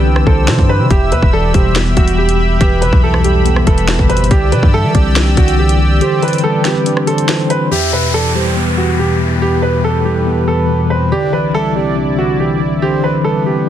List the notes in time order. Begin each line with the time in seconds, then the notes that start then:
Already playing: C2 D3 E3 G3 C4 D4 G4 B4 D5 G5 E6
0.05 D4
0.16 cross-stick
0.26 C2 D3 A4 C5, kick
0.48 C3 E3, snare
0.59 G2, kick
0.69 B4
0.80 C3
0.90 E1 E2 G4 E5 B5, kick, closed hi-hat
1.12 E2 B2 B4, closed hi-hat
1.22 E1, kick
1.33 E3 A4 D5
1.54 E1 G3 G4 C5, kick, closed hi-hat
1.75 B3, snare, closed hi-hat
1.97 E1 E2 F#4, kick, closed hi-hat
2.08 closed hi-hat
2.18 B2 G4
2.29 closed hi-hat
2.61 E1 E2 G4 B4, kick, closed hi-hat
2.81 F#1 B2 B4, closed hi-hat
2.93 B1, kick
3.03 E3 A4
3.14 cross-stick
3.24 G3 G4, closed hi-hat
3.46 B3, closed hi-hat
3.56 cross-stick
3.67 E1 E2 A4 B4, kick, closed hi-hat
3.78 closed hi-hat
3.88 B2, snare
3.99 G1, kick
4.09 B4 C5, closed hi-hat
4.17 closed hi-hat
4.24 closed hi-hat
4.31 C2 D3 G4 D5 G5 E6, kick, closed hi-hat
4.52 C3 E3 B4, closed hi-hat
4.63 G2, kick
4.73 G3 A4 E5
4.84 E3
4.95 C2 C4 G4 D5, kick, closed hi-hat
5.16 D4, snare, closed hi-hat
5.37 C2 D3 F#4, kick, closed hi-hat
5.48 closed hi-hat
5.59 E3 G4
5.69 closed hi-hat
6.01 D3 G4 C5, closed hi-hat
6.23 E3 B4, closed hi-hat
6.28 closed hi-hat
6.33 closed hi-hat
6.38 closed hi-hat
6.44 G3 A4 B4
6.65 C4 G4, snare, closed hi-hat
6.86 D4, closed hi-hat
6.97 cross-stick
7.07 D3 A4 C5, closed hi-hat
7.18 closed hi-hat
7.29 E3, snare
7.50 B4, closed hi-hat
7.71 E2 E3 G4 B4 E5, downlifter
7.93 B2 B4
8.14 E3 A4 D5
8.35 G3 G4 C5
8.57 B3
8.78 E2 F#4
8.99 B2 G4
9.42 E2 G4 B4
9.62 B2 B4
9.84 E3 A4
10.05 G3 G4
10.27 B3
10.48 E2 A4 B4
10.69 B2
10.90 B4 C5
11.12 C2 C3 D3 E4 G4 D5
11.33 E3 B4
11.54 G3 A4 E5
11.76 C4 G4 D5
11.97 D4
12.18 D3 F#4
12.39 E3 G4
12.82 D3 G4 C5
13.03 E3 B4
13.24 G3 A4 B4
13.46 C4 G4